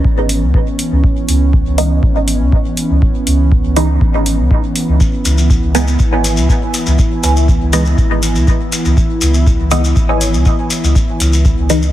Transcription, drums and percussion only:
0.05 kick loud
0.29 open hi-hat medium
0.54 kick loud
0.79 open hi-hat medium
1.04 kick loud
1.28 open hi-hat medium
1.53 kick loud
1.78 open hi-hat medium
2.03 kick loud
2.28 open hi-hat medium
2.52 kick loud
2.77 open hi-hat medium
3.02 kick loud
3.27 open hi-hat medium
3.52 kick loud
3.76 open hi-hat medium
4.01 kick loud
4.26 open hi-hat medium
4.51 kick loud
4.76 open hi-hat medium
5.00 kick loud
5.00 shekere soft
5.25 open hi-hat medium
5.25 shekere medium
5.38 shekere soft
5.50 kick loud
5.50 shekere soft
5.75 open hi-hat medium
5.75 shekere medium
5.87 shekere soft
5.99 kick loud
5.99 shekere soft
6.24 open hi-hat medium
6.24 shekere medium
6.37 shekere medium
6.49 kick loud
6.49 shekere soft
6.74 open hi-hat medium
6.74 shekere medium
6.86 shekere medium
6.99 kick loud
6.99 shekere soft
7.23 open hi-hat medium
7.23 shekere medium
7.36 shekere medium
7.48 kick loud
7.48 shekere soft
7.73 open hi-hat medium
7.73 shekere medium
7.85 shekere medium
7.98 kick loud
7.98 shekere soft
8.23 open hi-hat medium
8.23 shekere medium
8.35 shekere soft
8.47 kick loud
8.47 shekere soft
8.72 open hi-hat medium
8.72 shekere medium
8.85 shekere soft
8.97 kick loud
8.97 shekere soft
9.21 open hi-hat medium
9.21 shekere medium
9.34 shekere medium
9.47 kick loud
9.47 shekere soft
9.71 open hi-hat medium
9.71 shekere medium
9.84 shekere medium
9.96 kick loud
9.96 shekere soft
10.21 open hi-hat medium
10.21 shekere medium
10.34 shekere medium
10.45 kick loud
10.45 shekere soft
10.70 open hi-hat medium
10.70 shekere medium
10.84 shekere medium
10.95 kick loud
10.95 shekere soft
11.20 open hi-hat medium
11.20 shekere loud
11.33 shekere medium
11.45 kick loud
11.45 shekere soft
11.70 open hi-hat medium
11.70 shekere loud
11.82 shekere soft

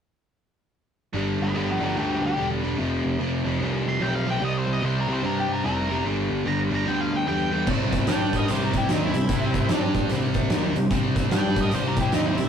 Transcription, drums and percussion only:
7.67 kick loud
7.67 crash medium
7.92 kick medium
7.92 closed hi-hat medium
8.07 snare loud
8.07 closed hi-hat medium
8.33 kick medium
8.33 closed hi-hat medium
8.48 closed hi-hat medium
8.74 kick medium
8.74 closed hi-hat medium
8.89 snare loud
8.89 closed hi-hat medium
9.14 closed hi-hat medium
9.29 kick loud
9.29 closed hi-hat medium
9.54 kick medium
9.54 closed hi-hat medium
9.69 snare loud
9.69 closed hi-hat medium
9.94 kick medium
9.94 closed hi-hat medium
10.09 closed hi-hat medium
10.34 kick medium
10.34 closed hi-hat medium
10.50 snare loud
10.50 closed hi-hat medium
10.76 closed hi-hat medium
10.91 kick loud
10.91 closed hi-hat medium
11.16 kick medium
11.16 snare soft
11.16 closed hi-hat medium
11.31 snare loud
11.31 closed hi-hat medium
11.56 kick medium
11.56 closed hi-hat medium
11.71 closed hi-hat medium
11.96 kick medium
11.96 closed hi-hat medium
12.12 snare loud
12.12 closed hi-hat medium
12.38 closed hi-hat medium

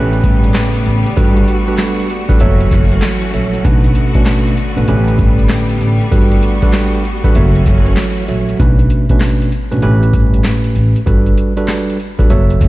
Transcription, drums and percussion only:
0.13 closed hi-hat soft
0.24 kick medium
0.24 closed hi-hat medium
0.44 closed hi-hat soft
0.54 snare loud
0.54 clap medium
0.54 closed hi-hat medium
0.74 closed hi-hat medium
0.86 closed hi-hat medium
1.06 closed hi-hat medium
1.17 kick loud
1.17 closed hi-hat loud
1.37 closed hi-hat medium
1.48 closed hi-hat medium
1.67 closed hi-hat medium
1.78 snare loud
1.78 clap medium
1.78 closed hi-hat loud
2.00 closed hi-hat soft
2.10 closed hi-hat medium
2.29 kick loud
2.29 closed hi-hat soft
2.40 closed hi-hat medium
2.61 closed hi-hat soft
2.71 kick medium
2.71 snare soft
2.71 closed hi-hat medium
2.91 closed hi-hat soft
3.02 snare loud
3.02 clap medium
3.02 closed hi-hat loud
3.22 closed hi-hat medium
3.33 closed hi-hat medium
3.54 closed hi-hat medium
3.65 kick loud
3.65 closed hi-hat loud
3.84 closed hi-hat medium
3.95 closed hi-hat medium
4.15 kick medium
4.15 closed hi-hat soft
4.26 snare loud
4.26 clap medium
4.26 closed hi-hat loud
4.47 closed hi-hat soft
4.57 closed hi-hat medium
4.77 closed hi-hat soft
4.88 closed hi-hat medium
5.08 closed hi-hat soft
5.18 kick medium
5.18 closed hi-hat medium
5.39 closed hi-hat soft
5.49 snare loud
5.49 clap medium
5.49 closed hi-hat medium
5.69 closed hi-hat medium
5.81 closed hi-hat medium
6.01 closed hi-hat medium
6.12 kick loud
6.12 closed hi-hat loud
6.32 closed hi-hat medium
6.43 closed hi-hat medium
6.62 kick medium
6.62 closed hi-hat soft
6.73 snare loud
6.73 clap medium
6.73 closed hi-hat loud
6.95 closed hi-hat soft
7.05 closed hi-hat medium
7.24 kick loud
7.24 closed hi-hat soft
7.35 closed hi-hat medium
7.55 closed hi-hat soft
7.66 kick medium
7.66 snare soft
7.66 closed hi-hat medium
7.86 closed hi-hat soft
7.97 snare loud
7.97 clap medium
7.97 closed hi-hat medium
8.17 closed hi-hat medium
8.28 closed hi-hat medium
8.49 closed hi-hat medium
8.59 kick loud
8.59 closed hi-hat medium
8.79 closed hi-hat medium
8.90 closed hi-hat medium
9.09 kick medium
9.09 closed hi-hat medium
9.20 snare loud
9.20 clap medium
9.20 closed hi-hat loud
9.42 closed hi-hat soft
9.52 closed hi-hat medium
9.72 closed hi-hat soft
9.82 closed hi-hat medium
10.03 closed hi-hat medium
10.13 kick medium
10.13 closed hi-hat medium
10.34 closed hi-hat soft
10.44 snare loud
10.44 clap medium
10.44 closed hi-hat medium
10.64 closed hi-hat medium
10.76 closed hi-hat medium
10.96 closed hi-hat medium
11.07 kick loud
11.07 closed hi-hat loud
11.26 closed hi-hat soft
11.38 closed hi-hat medium
11.57 closed hi-hat medium
11.68 snare loud
11.68 clap medium
11.68 closed hi-hat loud
11.90 closed hi-hat soft
12.00 closed hi-hat medium
12.19 kick loud
12.19 closed hi-hat soft
12.30 closed hi-hat medium
12.50 closed hi-hat soft
12.61 kick medium
12.61 snare soft
12.61 closed hi-hat medium

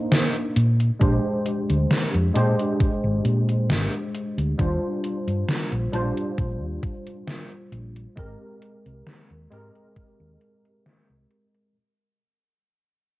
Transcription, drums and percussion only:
0.12 snare loud
0.12 closed hi-hat medium
0.56 closed hi-hat medium
0.80 closed hi-hat medium
1.01 kick loud
1.01 closed hi-hat medium
1.46 closed hi-hat medium
1.70 closed hi-hat soft
1.91 snare loud
1.91 closed hi-hat medium
2.35 closed hi-hat medium
2.59 closed hi-hat medium
2.80 kick loud
2.80 closed hi-hat medium
3.25 closed hi-hat medium
3.49 closed hi-hat medium
3.70 snare loud
3.70 closed hi-hat medium
4.14 closed hi-hat medium
4.38 closed hi-hat medium
4.59 kick loud
4.59 closed hi-hat medium
5.04 closed hi-hat medium
5.28 closed hi-hat soft
5.49 snare loud
5.49 closed hi-hat medium
5.93 closed hi-hat medium
6.17 closed hi-hat soft
6.38 kick loud
6.38 closed hi-hat medium
6.83 kick loud
6.83 closed hi-hat medium
7.07 closed hi-hat soft
7.28 snare loud
7.28 closed hi-hat medium
7.72 closed hi-hat medium
7.96 closed hi-hat soft
8.17 kick loud
8.17 closed hi-hat medium
8.62 closed hi-hat medium
8.86 closed hi-hat soft
9.07 snare loud
9.07 closed hi-hat medium
9.52 closed hi-hat medium
9.75 closed hi-hat soft
9.96 kick loud
9.96 closed hi-hat medium
10.41 closed hi-hat medium
10.65 closed hi-hat soft
10.86 snare loud
10.86 closed hi-hat medium
11.31 closed hi-hat medium
11.55 closed hi-hat soft

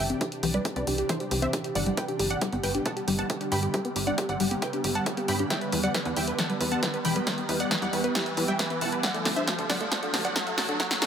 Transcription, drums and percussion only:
0.10 closed hi-hat soft
0.21 kick loud
0.21 closed hi-hat medium
0.32 closed hi-hat soft
0.43 open hi-hat loud
0.54 closed hi-hat soft
0.65 kick loud
0.65 closed hi-hat medium
0.76 closed hi-hat soft
0.87 open hi-hat medium
0.98 closed hi-hat soft
1.09 kick loud
1.09 closed hi-hat medium
1.20 closed hi-hat soft
1.31 open hi-hat loud
1.42 closed hi-hat soft
1.53 kick loud
1.53 closed hi-hat medium
1.64 closed hi-hat soft
1.75 open hi-hat medium
1.86 closed hi-hat soft
1.97 kick loud
1.97 closed hi-hat medium
2.08 closed hi-hat soft
2.19 open hi-hat loud
2.30 closed hi-hat soft
2.41 kick loud
2.41 closed hi-hat medium
2.53 closed hi-hat soft
2.63 open hi-hat medium
2.75 closed hi-hat soft
2.86 kick loud
2.86 closed hi-hat medium
2.97 closed hi-hat soft
3.08 open hi-hat loud
3.19 closed hi-hat soft
3.30 kick loud
3.30 closed hi-hat medium
3.41 closed hi-hat soft
3.52 open hi-hat loud
3.63 closed hi-hat soft
3.74 kick loud
3.74 closed hi-hat medium
3.85 closed hi-hat soft
3.96 open hi-hat loud
4.07 closed hi-hat soft
4.18 kick loud
4.18 closed hi-hat medium
4.29 closed hi-hat soft
4.40 open hi-hat medium
4.51 closed hi-hat soft
4.62 kick loud
4.62 closed hi-hat medium
4.73 closed hi-hat soft
4.84 open hi-hat loud
4.95 closed hi-hat soft
5.06 kick loud
5.06 closed hi-hat medium
5.17 closed hi-hat soft
5.28 open hi-hat medium
5.39 closed hi-hat soft
5.50 kick loud
5.50 snare soft
5.50 closed hi-hat medium
5.61 closed hi-hat soft
5.72 open hi-hat loud
5.83 closed hi-hat soft
5.94 kick loud
5.94 snare soft
5.94 closed hi-hat medium
6.06 closed hi-hat soft
6.16 open hi-hat medium
6.28 closed hi-hat soft
6.39 kick loud
6.39 snare medium
6.39 closed hi-hat medium
6.50 closed hi-hat soft
6.61 open hi-hat loud
6.72 closed hi-hat soft
6.83 kick loud
6.83 snare medium
6.83 closed hi-hat medium
6.94 closed hi-hat soft
7.05 open hi-hat medium
7.16 closed hi-hat soft
7.27 kick loud
7.27 snare medium
7.27 closed hi-hat medium
7.38 closed hi-hat soft
7.49 open hi-hat loud
7.60 closed hi-hat soft
7.71 kick loud
7.71 snare medium
7.71 closed hi-hat medium
7.82 closed hi-hat soft
7.93 open hi-hat medium
8.04 closed hi-hat soft
8.15 kick loud
8.15 snare medium
8.15 closed hi-hat medium
8.26 closed hi-hat soft
8.37 open hi-hat loud
8.48 closed hi-hat soft
8.59 kick loud
8.59 snare medium
8.59 closed hi-hat medium
8.70 closed hi-hat soft
8.81 open hi-hat medium
8.92 closed hi-hat soft
9.03 kick loud
9.03 snare medium
9.03 closed hi-hat medium
9.14 closed hi-hat soft
9.25 snare medium
9.25 open hi-hat loud
9.37 closed hi-hat soft
9.47 kick loud
9.47 snare medium
9.47 closed hi-hat loud
9.59 closed hi-hat soft
9.70 snare medium
9.70 open hi-hat medium
9.81 closed hi-hat soft
9.92 kick loud
9.92 snare medium
9.92 closed hi-hat loud
10.03 closed hi-hat soft
10.14 snare medium
10.14 open hi-hat loud
10.25 closed hi-hat soft
10.36 kick loud
10.36 snare medium
10.36 closed hi-hat loud
10.47 closed hi-hat soft
10.58 snare medium
10.58 open hi-hat medium
10.69 closed hi-hat soft
10.80 kick loud
10.80 snare medium
10.80 closed hi-hat medium
10.91 snare medium
10.91 closed hi-hat soft
11.02 snare medium
11.02 open hi-hat loud

